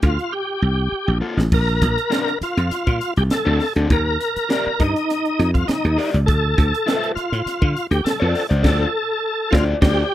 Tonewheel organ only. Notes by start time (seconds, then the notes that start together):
0.03 F4
0.32 G4
1.54 A#4
2.43 F4
3.17 G4
3.31 A4
3.92 A#4
4.80 D#4
5.54 F4
5.68 D#4
6.26 A4
7.15 F4
7.91 G4
8.04 A4
8.63 A4
9.51 F4
9.82 G4